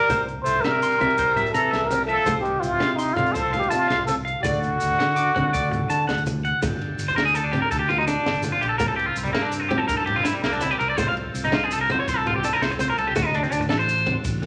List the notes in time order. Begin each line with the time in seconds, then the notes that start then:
Already playing: G3 A#4
0.09 C2 A#3 C5, kick, closed hi-hat, high conga, low conga, maracas
0.19 low conga
0.28 closed hi-hat, low conga
0.37 low conga
0.42 A3 C5, closed hi-hat, maracas
0.47 C2
0.55 high conga, low conga
0.61 C3 G3 A#4 E5, snare, closed hi-hat
0.65 D4, low conga
0.82 C6, closed hi-hat, maracas
0.91 maracas
1.00 C3 C4 E5, kick, closed hi-hat, high conga, low conga
1.10 maracas
1.18 C2 C5, kick, closed hi-hat, maracas
1.36 E5, closed hi-hat, low conga, maracas
1.46 maracas
1.51 C3 E3 A4 A#5, muted steel-string acoustic guitar stroke, maracas
1.56 closed hi-hat
1.71 C2 E5, snare, closed hi-hat
1.82 A#4, low conga
1.89 G3 C4, closed hi-hat, high conga, maracas
2.05 F3 A4 E5
2.09 closed hi-hat
2.26 C2 A3 C5, kick, closed hi-hat, high conga, low conga, maracas
2.36 low conga
2.41 D#3 G4, low conga
2.45 closed hi-hat
2.53 low conga
2.60 C2 C3 F4, closed hi-hat, maracas
2.72 high conga, low conga
2.80 C3 D4 F5, snare, closed hi-hat, low conga
2.96 C3 D#4 C6, maracas
3.00 closed hi-hat
3.14 D3 C4 F4 F5, high conga, low conga
3.18 C3, snare, closed hi-hat
3.26 maracas
3.32 F3 A4 C5, kick, closed hi-hat, maracas
3.36 C2
3.53 F5, closed hi-hat, low conga, maracas
3.59 D#3 G4, high conga
3.63 maracas
3.69 C3 D4 F4 A5, closed hi-hat, maracas
3.88 C2 F5, snare, closed hi-hat
3.98 low conga
4.06 F3 C4 A4, closed hi-hat, high conga, maracas
4.25 F5, closed hi-hat
4.42 D2 D3 A3 F#4 D5, kick, closed hi-hat, high conga, low conga, maracas
4.53 maracas
4.63 closed hi-hat, low conga, maracas
4.80 D2, closed hi-hat, maracas
4.91 high conga, low conga
4.99 D3 D4 F#5, snare, closed hi-hat
5.16 D6, closed hi-hat, maracas
5.35 D3 C4 F#5, kick, closed hi-hat, high conga, low conga
5.53 D2 D5, kick, closed hi-hat, maracas
5.71 muted clean electric guitar stroke, closed hi-hat, low conga, maracas
5.81 high conga
5.90 D3 D4 A5, closed hi-hat, maracas
6.07 D2 F#5, snare, closed hi-hat, maracas
6.17 low conga, maracas
6.26 A3, closed hi-hat, high conga, maracas
6.45 F#5, closed hi-hat
6.61 G1 A3 D4 G4 A4, kick, ride, high conga, low conga, maracas
6.81 ride, low conga
6.92 low conga
6.99 G1, ride, maracas
7.08 C5, high conga, low conga, maracas
7.16 D2 D4 A#4, snare, ride
7.25 G#4
7.35 A4, ride, low conga, maracas
7.44 D4, low conga
7.52 C4 G4, snare, ride, high conga, low conga
7.62 A#4
7.71 D2 A4, kick, ride, maracas
7.79 G4
7.89 F4, ride, low conga
7.98 D#4, high conga
8.07 D4, ride, maracas
8.26 G1, snare, ride
8.35 low conga, maracas
8.43 A3, ride, high conga, maracas
8.52 F4
8.61 A#1 G4, ride, maracas
8.69 A4
8.78 C2 A#3 C4 E4 A#4, kick, ride, high conga, low conga, maracas
8.88 A4
8.96 G4, ride, low conga
9.06 F4, low conga
9.16 C2, ride, maracas
9.24 G3, high conga, low conga
9.33 G2 A#3 D4, snare, ride
9.42 D4
9.52 ride, low conga, maracas
9.60 F4, low conga
9.69 C4 G4, ride, high conga, low conga
9.78 A4
9.88 G2 A#4, kick, ride, maracas
9.97 A4
10.06 G4, ride, low conga
10.16 F4, high conga
10.23 D4 E4, ride, maracas
10.33 G3
10.44 C2 A#3, snare, ride
10.52 D4, low conga, maracas
10.60 C4 E4, ride, high conga, maracas
10.71 G4
10.79 C2 A#4, ride, maracas
10.90 D5
10.97 C2 A3 F4 A4 C5, kick, ride, high conga, low conga, maracas
11.08 F5
11.17 ride, low conga
11.26 low conga
11.34 C2, ride, maracas
11.45 D#4, high conga, low conga
11.52 C2 D4 F4, snare, ride
11.64 G#4
11.71 A4, ride, low conga, maracas
11.81 A#4, low conga
11.90 C4 C5, snare, ride, high conga, low conga
12.00 C#5
12.08 C2 C5, kick, ride, maracas
12.17 A4
12.26 F4, ride, low conga
12.35 G4, high conga
12.44 D4 A4, ride, maracas
12.53 A#4
12.61 C2 C5, snare, ride
12.70 muted clean electric guitar stroke, low conga, maracas
12.79 C4 C5, ride, high conga, maracas
12.90 A#4
12.98 C2 A4, ride, maracas
13.07 G4
13.15 D2 A3 D4 F#4, kick, ride, high conga, low conga, maracas
13.24 D#4, low conga
13.34 D4, ride, maracas
13.43 C4, maracas
13.52 D2 D4, ride, maracas
13.60 muted clean electric guitar stroke, high conga, low conga, maracas
13.69 A1 D4 A4, snare, ride
13.79 C5, low conga, maracas
13.89 ride, low conga, maracas
14.06 C4, ride, high conga, low conga, maracas
14.16 low conga
14.24 A1, kick, ride, maracas
14.42 ride, low conga